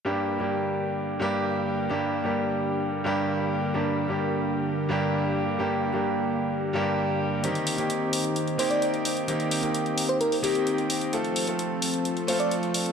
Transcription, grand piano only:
\new Staff \with { instrumentName = "Grand piano" } { \time 4/4 \key g \minor \tempo 4 = 130 <g, g bes d' g'>8. <g, g bes d' g'>4.~ <g, g bes d' g'>16 <g, g bes d' g'>4. | <g, g bes d' g'>8. <g, g bes d' g'>4.~ <g, g bes d' g'>16 <g, g bes d' g'>4. | <g, g bes d' g'>8. <g, g bes d' g'>4.~ <g, g bes d' g'>16 <g, g bes d' g'>4. | <g, g bes d' g'>8. <g, g bes d' g'>4.~ <g, g bes d' g'>16 <g, g bes d' g'>4. |
<ees bes c' ees' g'>8. <ees bes c' ees' g'>4.~ <ees bes c' ees' g'>16 <ees bes c' ees' g'>4. | <ees bes c' ees' g'>8. <ees bes c' ees' g'>4.~ <ees bes c' ees' g'>16 <ees bes c' ees' g'>4. | <a c' f' a'>8. <a c' f' a'>4.~ <a c' f' a'>16 <a c' f' a'>4. | }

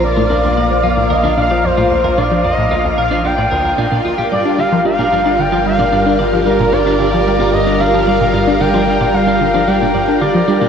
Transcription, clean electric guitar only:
\new Staff \with { instrumentName = "Clean electric guitar" } { \time 4/4 \key g \minor \tempo 4 = 112 r16 bes'16 d'16 d'16 d''16 r16 f'16 r16 bes'16 d'16 d'16 d''16 r16 f'16 r16 bes'16 | d'16 d'16 d''16 r16 f'16 r16 bes'16 d'16 d'16 d''16 bes'16 bes'16 d'16 d'16 f'16 g'16 | d''16 r16 f'16 r16 d'16 d'16 d'16 d''16 r16 f'16 r16 d'16 d'16 d'16 d''16 r16 | f'16 r16 d'16 d'16 d'16 d''16 r16 f'16 r16 d'16 d'16 d'16 d''16 r16 f'16 r16 |
d'16 d'16 d'16 d''16 r16 f'16 r16 d'16 d'16 d'16 d''16 r16 f'16 r16 d'16 d'16 | }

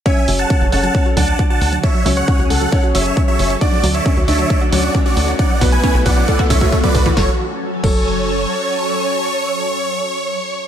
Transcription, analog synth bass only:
\new Staff \with { instrumentName = "Analog synth bass" } { \clef bass \time 4/4 \key fis \minor \tempo 4 = 135 r8 fis,,8 r16 fis,,16 fis,,8 r8 d,8 r8 d,8 | r8 cis,8 r16 cis,16 cis,8 r8 fis,,8 r8 fis,,8 | r8 d,8 r16 d,16 d,8 r8 d,8 r8 d,8 | r8 b,,8 r16 b,,16 b,,8 r8 b,,8 r8 b,,8 |
fis,,16 r4 r16 fis,,4. r4 | r1 | }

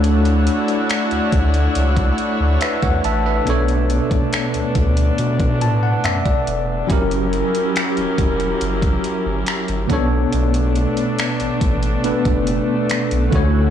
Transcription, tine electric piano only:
\new Staff \with { instrumentName = "Tine electric piano" } { \time 4/4 \key b \minor \tempo 4 = 70 << { r2. <b' e''>16 <cis'' fis''>16 <e'' a''>16 <b' e''>16~ | <b' e''>16 r2 r16 a''16 fis''16 e''16 d''8. | r1 | r1 | } \\ { <a d' e' fis' cis''>2.~ <a d' e' fis' cis''>8 r8 | <b, b d' a' cis''>1 | <fis cis' e' g' ais'>2.~ <fis cis' e' g' ais'>8 <b, b d' a' cis''>8~ | <b, b d' a' cis''>2 <b, b d' a' b'>4. <d a e' fis' cis''>8 | } >> }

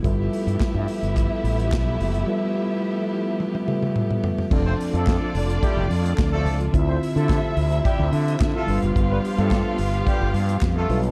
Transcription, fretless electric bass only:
\new Staff \with { instrumentName = "Fretless electric bass" } { \clef bass \time 4/4 \key g \mixolydian \tempo 4 = 108 g,,8 r16 g,16 r16 g,16 r16 g,,8 r16 a,,8 b,,8 fis,,8 | r1 | f,,8 r16 f,8 r16 f,,8 r16 f,,16 f,8 d,8 cis,8 | d,8 r16 d8 r16 d,8 r16 d,16 d8 d16 r16 g,,16 fis,,16 |
g,,8 r16 g,8 r16 g,,8 r16 g,,16 g,8 f,8 b,,8 | }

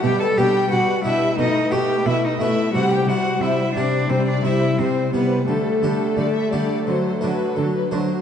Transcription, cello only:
\new Staff \with { instrumentName = "Cello" } { \time 4/4 \key c \lydian \tempo 4 = 88 g'16 a'16 g'8 fis'8 e'8 ees'8 g'8 e'16 ees'16 e'8 | fis'16 g'16 fis'8 e'8 d'8 c'16 d'16 e'8 c'8 b8 | a2. r4 | }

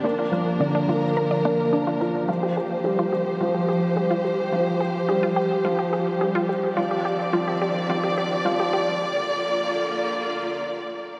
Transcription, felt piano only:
\new Staff \with { instrumentName = "Felt piano" } { \clef bass \time 4/4 \key bes \mixolydian \tempo 4 = 107 bes8 f8 d8 f8 r8 bes8 d'8 f'8 | f8 r8 g8 r8 f8 r8 g8 r8 | f8 r8 g8 r8 f8 r8 g8 r8 | f8 r8 f8 r8 f8 r8 f8 r8 |
r1 | }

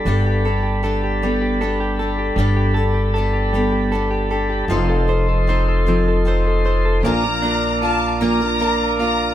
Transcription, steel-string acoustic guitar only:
\new Staff \with { instrumentName = "Steel-string acoustic guitar" } { \time 6/8 \key g \mixolydian \tempo 4. = 52 <g b d' g' a'>8 <d' g' a'>8 <b d' g' a'>8 <g b d' g' a'>8 <b d' g' a'>8 <d' g' a'>8 | <g b d' g' a'>8 <d' g' a'>8 <b d' g' a'>8 <g b d' g' a'>8 <b d' g' a'>8 <d' g' a'>8 | <f c' ees' a' c''>8 <ees' a' c''>8 <c' ees' a' c''>8 <f c' ees' a' c''>8 <c' ees' a' c''>8 <ees' a' c''>8 | \key bes \lydian <bes, f bes d' f' bes'>16 <bes f' bes'>16 <bes d' f' bes'>8 <bes d' f' bes'>8 <bes, f bes d' f' bes'>16 <bes d' f' bes'>16 <bes d' f' bes'>8 <bes d' f' bes'>8 | }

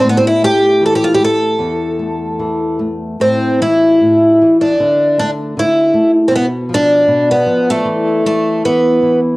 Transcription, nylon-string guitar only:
\new Staff \with { instrumentName = "Nylon-string guitar" } { \clef bass \time 2/4 \key a \minor \tempo 4 = 76 a,8 a8 e8 a8 | e,8 a8 e8 a8 | a,8 e8 a,8 e8 | d8 a8 d8 a8 |
b,8 f8 b,8 f8 | e8 e8 e8 e8 | }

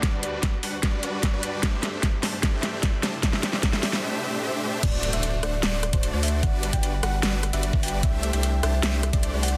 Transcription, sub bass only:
\new Staff \with { instrumentName = "Sub bass" } { \clef bass \time 4/4 \key g \major \tempo 4 = 150 r1 | r1 | r1 | d,,8. d,,8. d,,8 d,,8. d,,8 d,8. |
g,,8. g,,8. g,,8 g,,8. g,,8 g,,8. | c,8. c,8. c,8 c,8. c,8 c,8. | }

